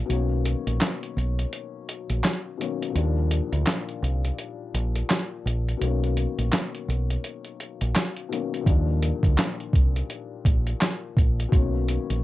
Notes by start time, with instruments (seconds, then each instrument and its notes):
0.06 fingered electric bass B1, grand piano B2 D#3 F#3
0.10 grand piano A#3 C#4, closed hi-hat
0.45 closed hi-hat
0.67 fingered electric bass A#1, closed hi-hat
0.81 snare, clap, closed hi-hat
1.03 closed hi-hat
1.17 fingered electric bass B1, closed hi-hat
1.39 closed hi-hat
1.53 closed hi-hat
1.89 closed hi-hat
2.10 fingered electric bass A#1, closed hi-hat
2.24 snare, clap, closed hi-hat
2.58 grand piano B2 D#3 F#3 A#3 C#4, closed hi-hat
2.83 closed hi-hat
2.90 grand piano A#2 D#3 F3
2.95 fingered electric bass D#2, grand piano G3 D4, closed hi-hat
3.31 closed hi-hat
3.52 fingered electric bass D2, closed hi-hat
3.66 snare, clap, closed hi-hat
3.89 closed hi-hat
4.02 fingered electric bass C2, closed hi-hat
4.25 closed hi-hat
4.38 closed hi-hat
4.74 fingered electric bass A#1, closed hi-hat
4.95 closed hi-hat
5.10 snare, clap, closed hi-hat
5.45 fingered electric bass A#1, closed hi-hat
5.68 closed hi-hat
5.77 fingered electric bass B1, grand piano B2 D#3 F#3
5.81 grand piano A#3 C#4, closed hi-hat
6.04 closed hi-hat
6.17 closed hi-hat
6.38 fingered electric bass A#1, closed hi-hat
6.52 snare, clap, closed hi-hat
6.75 closed hi-hat
6.88 fingered electric bass B1, closed hi-hat
7.10 closed hi-hat
7.24 closed hi-hat
7.45 closed hi-hat
7.60 closed hi-hat
7.81 fingered electric bass A#1, closed hi-hat
7.95 snare, clap, closed hi-hat
8.17 closed hi-hat
8.29 grand piano B2 D#3 F#3 A#3 C#4, closed hi-hat
8.54 closed hi-hat
8.61 grand piano A#2 D#3 F3
8.66 fingered electric bass D#2, grand piano G3 D4, kick, closed hi-hat
9.03 closed hi-hat
9.23 fingered electric bass D2, kick, closed hi-hat
9.38 snare, clap, closed hi-hat
9.60 closed hi-hat
9.73 fingered electric bass C2, kick, closed hi-hat
9.96 closed hi-hat
10.10 closed hi-hat
10.45 fingered electric bass A#1, kick, closed hi-hat
10.67 closed hi-hat
10.81 snare, clap, closed hi-hat
11.17 fingered electric bass A#1, kick, closed hi-hat
11.40 closed hi-hat
11.49 fingered electric bass B1, grand piano B2 D#3 F#3, kick
11.53 grand piano A#3 C#4, closed hi-hat
11.88 closed hi-hat
12.10 fingered electric bass A#1, closed hi-hat